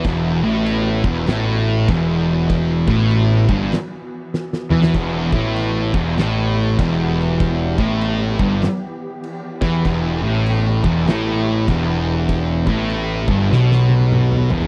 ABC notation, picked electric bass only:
X:1
M:4/4
L:1/8
Q:"Swing" 1/4=98
K:Em
V:1 name="Picked electric bass" clef=bass
E,,, A,,,2 E,,, A,,,2 E,,,2- | E,,, A,,,2 G,,, z3 E,, | E,,, A,,,2 E,,, A,,,2 E,,,2- | E,,, A,,,2 G,,, z3 E,, |
E,,, A,,,2 E,,, A,,,2 E,,,2- | E,,, A,,,2 G,,, B,,,3 E,,, |]